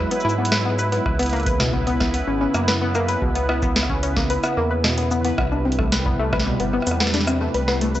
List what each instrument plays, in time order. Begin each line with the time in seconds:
Already playing: analog synth pad F#3 G#3 E4, synth texture B4
0.11 synth pluck B3, closed hi-hat, cabasa
0.20 cabasa
0.25 analog synth bass G#2, synth pluck E4
0.29 cabasa
0.38 synth pluck B3
0.45 closed hi-hat
0.52 synth pluck B4, cross-stick, snare
0.65 synth pluck B3
0.79 synth pluck B4, cabasa
0.92 synth pluck B3, closed hi-hat
1.06 analog synth bass C#2, analog synth pad C#3 B3, synth pluck B4, kick, cross-stick
1.19 synth pluck B3, closed hi-hat
1.23 closed hi-hat
1.26 closed hi-hat
1.29 synth pluck A#3, closed hi-hat
1.33 closed hi-hat
1.36 closed hi-hat
1.40 closed hi-hat
1.43 synth pluck B4, kick, closed hi-hat
1.46 closed hi-hat
1.60 synth pluck B2, cross-stick, snare
1.73 synth pluck B3, kick
1.87 synth pluck B3, closed hi-hat
2.00 synth pluck B3, kick, cross-stick, snare
2.14 synth pluck B3, closed hi-hat
2.27 analog synth bass G#1, synth pluck C#4
2.41 synth pluck C#4
2.54 analog synth bass F#2, synth pluck A#3, cross-stick, cabasa
2.68 synth pluck B4, snare
2.81 synth pluck B3
2.95 synth pluck A#3, cross-stick, cabasa
3.08 synth pluck B4, closed hi-hat
3.22 analog synth bass C#2, synth pluck B2, kick
3.35 synth pluck B3, closed hi-hat
3.49 synth pluck B3, cross-stick
3.62 synth pluck B3, kick, cabasa
3.76 synth pluck B3, snare, closed hi-hat
3.83 cross-stick
3.90 synth pluck C#4, kick
4.03 synth pluck C#4, closed hi-hat
4.17 synth pluck A#3, kick, snare
4.30 synth pluck B4, closed hi-hat
4.44 synth pluck B3, cross-stick, cabasa
4.57 analog synth bass E2, synth pluck A#3
4.71 synth pluck B4
4.84 synth pluck B2, cross-stick, snare
4.98 synth pluck B3, closed hi-hat
5.11 synth pluck B3, cabasa
5.25 synth pluck B3, closed hi-hat
5.38 analog synth bass C2, analog synth pad C3 G3, synth pluck B3, kick, cross-stick
5.52 synth pluck D4
5.65 synth pluck C4
5.72 closed hi-hat
5.79 synth pluck A3, kick, cross-stick
5.92 synth pluck B4, snare, closed hi-hat
6.06 synth pluck B3, kick
6.09 kick
6.13 kick
6.16 synth pluck A3, kick
6.33 synth pluck B4, kick, cross-stick
6.39 snare
6.46 synth pluck B2
6.60 analog synth bass G1, synth pluck B3, closed hi-hat
6.73 synth pluck B3, cross-stick
6.82 cross-stick
6.87 analog synth bass E2, synth pluck B3, closed hi-hat, cabasa
6.91 cross-stick
7.00 synth pluck B3, snare
7.07 snare
7.14 synth pluck D4, snare, closed hi-hat
7.21 snare
7.27 synth pluck C4, cross-stick, cabasa
7.41 synth pluck A3
7.54 analog synth bass C2, synth pluck B4, closed hi-hat
7.68 synth pluck B3, cross-stick, snare
7.81 synth pluck A3, closed hi-hat
7.95 synth pluck B4, cabasa